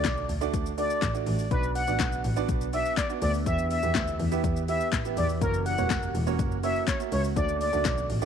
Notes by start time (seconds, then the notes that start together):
Already playing: A3 D4 F#4 D5
0.04 B1, kick, snare, clap, closed hi-hat, shaker
0.17 shaker
0.29 D2, open hi-hat, shaker
0.41 A3 D4 F#4 D5, shaker
0.54 D2, kick, closed hi-hat, shaker
0.66 shaker
0.77 A3 D4 F#4 D5, open hi-hat, shaker
0.90 shaker
1.02 A1, kick, snare, clap, closed hi-hat, shaker
1.14 A3 D4 F#4 D5, shaker
1.26 A1, open hi-hat, shaker
1.39 shaker
1.51 B1 B3 D4 F#4 B4 D5, kick, closed hi-hat, shaker
1.63 shaker
1.75 F#5, open hi-hat, shaker
1.87 A1 B3 D4 F#4 D5, shaker
1.99 B1, kick, snare, clap, closed hi-hat, shaker
2.12 shaker
2.24 A1, open hi-hat, shaker
2.36 B3 D4 F#4 D5, shaker
2.49 B1, kick, closed hi-hat, shaker
2.61 shaker
2.73 B3 D4 F#4 D5 E5, open hi-hat, shaker
2.85 shaker
2.97 D5, kick, snare, clap, closed hi-hat, shaker
3.09 B3 D4 F#4 D5, shaker
3.22 D2 D5, open hi-hat, shaker
3.34 shaker
3.46 E2 E3 B3 E4 G4 B4 E5, kick, closed hi-hat, shaker
3.58 shaker
3.71 E5, open hi-hat, shaker
3.83 E2 B3 E4 G4 E5, shaker
3.95 D2, kick, snare, clap, closed hi-hat, shaker
4.07 shaker
4.20 E2, open hi-hat, shaker
4.32 B3 E4 G4 E5, shaker
4.44 E2, kick, closed hi-hat, shaker
4.56 shaker
4.68 B3 E4 G4 E5, open hi-hat, shaker
4.81 shaker
4.92 A1, kick, snare, clap, closed hi-hat, shaker
5.05 B3 E4 G4 E5, shaker
5.17 E2 D5, open hi-hat, shaker
5.29 shaker
5.41 F#1 A#3 C#4 F#4 A#4 C#5, kick, closed hi-hat, shaker
5.54 shaker
5.66 F#5, open hi-hat, shaker
5.78 E1 A#3 C#4 F#4 C#5, shaker
5.90 F#1, kick, snare, clap, closed hi-hat, shaker
6.03 shaker
6.15 E1, open hi-hat, shaker
6.27 A#3 C#4 F#4 C#5, shaker
6.39 F#1, kick, closed hi-hat, shaker
6.52 shaker
6.63 A#3 C#4 F#4 C#5 E5, open hi-hat, shaker
6.76 shaker
6.87 C#5, kick, snare, clap, closed hi-hat, shaker
7.00 A#3 C#4 F#4 E5, shaker
7.12 C#2 C#5, open hi-hat, shaker
7.24 shaker
7.36 D2 A3 D4 F#4 D5, kick, closed hi-hat, shaker
7.49 shaker
7.61 D5, open hi-hat, shaker
7.73 D2 A3 D4 F#4 D5, shaker
7.85 B1, kick, snare, clap, closed hi-hat, shaker
7.98 shaker
8.10 A1, open hi-hat, shaker
8.22 A3 D4 F#4, shaker